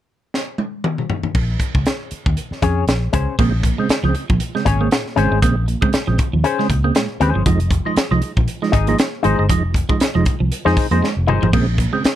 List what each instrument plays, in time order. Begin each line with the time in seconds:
0.34 snare
0.58 high tom
0.84 mid tom
0.98 mid tom
1.10 floor tom
1.23 floor tom
1.35 fingered electric bass A#1, kick, crash
1.60 kick, closed hi-hat
1.75 fingered electric bass C#2, kick
1.86 snare, closed hi-hat
2.11 muted fingered electric bass stroke, closed hi-hat
2.26 fingered electric bass D#2, kick
2.37 closed hi-hat
2.51 muted fingered electric bass stroke, snare
2.62 fingered electric bass F2, clean electric guitar C#4 G#4 C#5, kick, closed hi-hat
2.87 fingered electric bass A#1, snare, closed hi-hat
3.13 fingered electric bass C#2, clean electric guitar C#4 G#4 C5, kick, closed hi-hat
3.39 fingered electric bass A#1, tonewheel organ C#3 G#3 C4, clean electric guitar A#3, kick, crash
3.63 tonewheel organ A#2, muted clean electric guitar stroke, kick, closed hi-hat
3.78 tonewheel organ C#3 G#3 C4, clean electric guitar G#3
3.89 muted fingered electric bass stroke, snare, closed hi-hat
4.03 fingered electric bass C#2, tonewheel organ C#3 G#3 C4, clean electric guitar F3
4.15 muted clean electric guitar stroke, closed hi-hat
4.30 fingered electric bass A#1, tonewheel organ A#2, clean electric guitar F3, kick
4.40 closed hi-hat
4.55 tonewheel organ C#3 G#3 C4, clean electric guitar G#3, snare
4.65 fingered electric bass G#1, tonewheel organ A#2, clean electric guitar C#4 G#4 C#5, muted clean electric guitar stroke, kick, closed hi-hat
4.80 tonewheel organ C#3 G#3 C4, clean electric guitar A#3
4.91 tonewheel organ A#2, muted clean electric guitar stroke, snare, closed hi-hat
5.06 snare
5.16 fingered electric bass G#1, tonewheel organ C#3 G#3 C4, clean electric guitar G#3 C#4 G#4 C5, closed hi-hat
5.31 fingered electric bass G#1, tonewheel organ G#3 C4, clean electric guitar G#3
5.42 fingered electric bass A#1, tonewheel organ C#3 G#3 C4, clean electric guitar A#3, kick, closed hi-hat
5.68 tonewheel organ A#2, muted clean electric guitar stroke, closed hi-hat
5.81 tonewheel organ C#3 G#3 C4, clean electric guitar G#3, kick
5.93 muted fingered electric bass stroke, snare, closed hi-hat
6.07 fingered electric bass A#1, tonewheel organ C#3 G#3 C4, clean electric guitar F3
6.18 muted clean electric guitar stroke, kick, closed hi-hat
6.33 fingered electric bass D#2, tonewheel organ A#2, clean electric guitar F3
6.44 clean electric guitar C#4 G#4 C5, closed hi-hat
6.59 tonewheel organ C#3 G#3 C4, clean electric guitar G#3, snare
6.69 fingered electric bass C#2, tonewheel organ A#2, muted clean electric guitar stroke, kick, closed hi-hat
6.84 tonewheel organ C#3 G#3 C4, clean electric guitar A#3
6.95 tonewheel organ A#2, clean electric guitar G#3, snare, closed hi-hat
7.20 fingered electric bass D#2, tonewheel organ C#3 G#3 C4, clean electric guitar C#4 G#4 C5, muted clean electric guitar stroke, closed hi-hat
7.34 fingered electric bass G1, clean electric guitar F3, tonewheel organ G#3 C4
7.46 fingered electric bass F1, tonewheel organ F3 G#3 D#4, clean electric guitar F3, kick, closed hi-hat
7.60 closed hi-hat
7.71 muted clean electric guitar stroke, kick, closed hi-hat
7.85 tonewheel organ F3 G#3 D#4, clean electric guitar G#3
7.96 muted fingered electric bass stroke, snare, closed hi-hat
8.11 fingered electric bass C2, tonewheel organ F3 G#3 D#4, clean electric guitar F3
8.22 muted clean electric guitar stroke, closed hi-hat
8.37 fingered electric bass A#1, clean electric guitar F3, kick
8.48 closed hi-hat
8.62 tonewheel organ F3 G#3 D#4, clean electric guitar G#3, snare
8.72 fingered electric bass G#1, clean electric guitar D#4 G#4 D#5, muted clean electric guitar stroke, kick, closed hi-hat
8.87 tonewheel organ F3 G#3 D#4, clean electric guitar A#3, closed hi-hat
8.99 muted clean electric guitar stroke, snare, closed hi-hat
9.23 fingered electric bass G#1, tonewheel organ F3 G#3 D#4, clean electric guitar G#3 D#4 G#4 C5, closed hi-hat
9.39 fingered electric bass G1, clean electric guitar G#3, tonewheel organ G#3 D#4
9.50 fingered electric bass F1, tonewheel organ F3 G#3 D#4, clean electric guitar F3, kick, closed hi-hat
9.74 muted clean electric guitar stroke, kick, closed hi-hat
9.89 tonewheel organ F3 G#3 D#4, clean electric guitar G#3, kick
10.00 muted fingered electric bass stroke, snare, closed hi-hat
10.15 fingered electric bass F1, tonewheel organ F3 G#3 D#4, clean electric guitar F3
10.25 muted clean electric guitar stroke, kick, closed hi-hat
10.40 fingered electric bass C2, clean electric guitar F3
10.52 closed hi-hat
10.65 fingered electric bass F2, tonewheel organ F3 G#3 D#4, clean electric guitar G#3 D#4 G#4 C5, snare
10.77 muted clean electric guitar stroke, kick, open hi-hat
10.91 fingered electric bass F2, tonewheel organ F3 G#3 D#4, clean electric guitar A#3 D#4 G#4 C5, closed hi-hat
11.02 clean electric guitar G#3, snare
11.17 fingered electric bass F1
11.27 fingered electric bass G1, tonewheel organ F3 G#3 D#4, clean electric guitar D#4 G#4 C5, muted clean electric guitar stroke, mid tom
11.42 fingered electric bass G#1, clean electric guitar F3, tonewheel organ G#3 D#4, floor tom
11.53 fingered electric bass A#1, tonewheel organ C#3 G#3 C4, clean electric guitar A#3, kick, crash
11.78 tonewheel organ A#2, muted clean electric guitar stroke, kick, closed hi-hat
11.93 tonewheel organ C#3 G#3 C4, clean electric guitar G#3
12.04 muted fingered electric bass stroke, snare, closed hi-hat